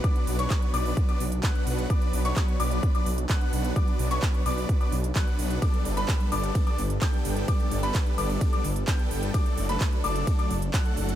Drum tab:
RD |----------------|----------------|----------------|x---x---x---x---|
HH |xxoxxxooxxoxxxox|xxoxxxoxxxoxxxox|xxoxxxooxxoxxxox|xxoxxxoxxxoxxxox|
CP |----x-------x---|----x-------x---|----x-------x---|----x-------x---|
BD |o---o---o---o---|o---o---o---o---|o---o---o---o---|o---o---o---o---|

RD |x---x---x---x---|x---x---x---x---|
HH |xxoxxxooxxoxxxox|xxoxxxoxxxoxxxox|
CP |----x-------x---|----x-------x---|
BD |o---o---o---o---|o---o---o---o---|